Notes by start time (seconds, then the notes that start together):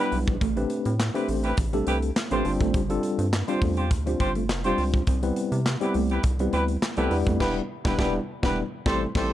Already playing: G3 B3
0.00 D4 E4 G4 B4
0.12 B1, muted clean electric guitar stroke, open hi-hat
0.27 A#1 B3, kick
0.41 A1 A3, kick, closed hi-hat
0.56 A3 C4 D4 G4 B4, closed hi-hat
0.70 muted clean electric guitar stroke, closed hi-hat
0.85 A2 C4, closed hi-hat
1.00 snare, clap
1.14 A3 C4 D4 E4 G4 B4 C5, closed hi-hat
1.28 A1 A3, open hi-hat
1.44 E4 G4 B4, closed hi-hat
1.57 A1, muted clean electric guitar stroke, kick, closed hi-hat
1.73 G3 A3 C4 D4 G4 A4, closed hi-hat
1.87 C2 C4 E4 G4 B4, closed hi-hat
2.02 closed hi-hat
2.16 snare, clap
2.31 A1 A3 C4 D4 F4 G4 B4 C5, closed hi-hat
2.45 G1 G3 C4 D4 F4 C5, muted clean electric guitar stroke, open hi-hat
2.60 G#1 A3, kick, closed hi-hat
2.74 G1 G3, kick, closed hi-hat
2.90 G3 C4 D4 F4 A4, closed hi-hat
3.03 muted clean electric guitar stroke, closed hi-hat
3.18 G2 C4, closed hi-hat
3.33 snare, clap
3.47 G3 C4 D4 F4 G4 C5, closed hi-hat
3.62 E2 A3, kick, open hi-hat
3.77 F4 G4 C5, closed hi-hat
3.91 D2, kick, closed hi-hat
4.06 G3 C4 D4 F4 C5, closed hi-hat
4.19 G1 F4 G4 C5, muted clean electric guitar stroke, kick, closed hi-hat
4.35 A3, closed hi-hat
4.49 F1, snare, clap
4.64 G3 C4 D4 F4 G4 C5, closed hi-hat
4.78 C#2, open hi-hat
4.93 C4, kick, closed hi-hat
5.07 C2 C4, kick, closed hi-hat
5.23 G3 B3 C4 E4 B4, closed hi-hat
5.36 muted clean electric guitar stroke, closed hi-hat
5.52 C3 B3, closed hi-hat
5.66 snare, clap
5.81 G3 B3 C4 E4 G4 B4, closed hi-hat
5.94 C2 A3, open hi-hat
6.10 E4 G4 B4, closed hi-hat
6.23 C2, muted clean electric guitar stroke, kick, closed hi-hat
6.39 G3 B3 C4 E4 B4, closed hi-hat
6.53 D2 B3 E4 G4 B4, closed hi-hat
6.68 closed hi-hat
6.82 snare, clap
6.97 C2 G3 A3 B3 C4 E4 G4 A4 B4, closed hi-hat
7.11 E2 G3 B3 D4 E4 B4, muted clean electric guitar stroke, open hi-hat
7.27 F2 A3, kick, closed hi-hat
7.40 E1 G3 B3 D4 E4 G4 B4, kick, snare, crash
7.84 E1 G3 B3 D4 E4 G4 B4, kick, snare
7.98 E1 G3 B3 D4 E4 G4 B4, kick, snare
8.43 E1 G3 B3 D4 E4 G4 B4, kick, snare
8.86 A1 G3 A3 C4 E4 G4 A4 C5, kick, snare
9.15 A1 G3 A3 C4 E4 G4 A4 C5, kick, snare, crash